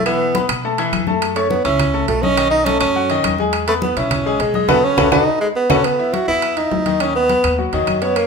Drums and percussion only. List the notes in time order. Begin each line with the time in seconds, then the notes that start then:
0.06 high timbale, claves
0.20 high conga
0.35 high conga, high timbale
0.49 high conga, high timbale, claves
0.63 high conga
0.78 high conga, high timbale
0.93 high conga, high timbale, claves
1.07 high conga
1.22 high conga, high timbale, claves
1.36 high conga, high timbale
1.50 high conga
1.65 high conga, high timbale
1.79 high conga, low conga, high timbale, claves
1.94 high conga
2.08 high conga, high timbale, low timbale
2.23 high conga
2.37 high timbale, claves
2.52 high conga
2.66 high conga, high timbale
2.81 high conga, high timbale, claves
2.95 high conga
3.10 high conga, high timbale
3.24 high conga, high timbale, claves
3.38 high conga
3.53 high conga, high timbale, claves
3.67 high conga, high timbale
3.82 high conga
3.96 high conga, high timbale
4.11 high conga, low conga, high timbale, claves
4.25 high conga
4.40 high conga, high timbale
4.54 high conga
4.69 low conga, high timbale, claves
4.98 low conga, high timbale, claves
5.12 low conga, high timbale, claves
5.70 low conga, high timbale, claves
5.84 high conga, high timbale, claves
5.99 high conga
6.14 high conga, high timbale
6.28 high conga
6.42 high conga, high timbale, claves
6.57 high conga, high timbale
6.71 high conga, low timbale
6.86 high conga, high timbale
7.00 high conga, high timbale, claves
7.15 high conga
7.29 high conga, high timbale
7.44 high conga, high timbale, claves
7.58 high conga
7.73 high conga, high timbale
7.87 high conga, high timbale, claves
8.02 high timbale
8.16 high conga, high timbale, claves